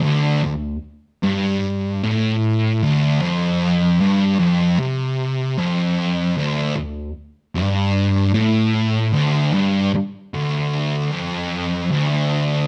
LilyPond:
\new Staff \with { instrumentName = "Distorted electric guitar" } { \clef bass \time 4/4 \key d \minor \tempo 4 = 76 d,8 d,8 r8 g,4 a,4 d,8 | f,4 g,8 f,8 c4 f,4 | d,8 d,8 r8 g,4 a,4 d,8 | g,8 r8 d,4 f,4 d,4 | }